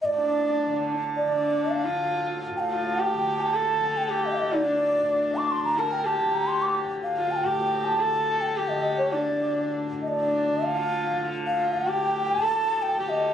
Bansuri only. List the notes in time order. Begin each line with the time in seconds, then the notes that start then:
0.02 D5 D#5
1.17 D5
1.71 F5
2.57 F5 G5
2.85 G5
3.41 A5
3.97 G5
4.26 D#5
4.32 F5
4.39 D#5
4.53 D5
5.36 D6
5.51 C6
5.64 A#5
5.79 A5
5.92 G5
6.06 A5
6.34 A#5
6.47 C6
6.62 D6
7.03 F5
7.31 A5
7.36 G5
7.85 A5
8.41 G5
8.69 D#5
8.97 C#5
9.12 D5
10.02 D#5
10.08 D5
10.64 F5
11.46 F5
11.72 F#5
11.87 G5
12.27 A5
12.82 G5
13.09 D#5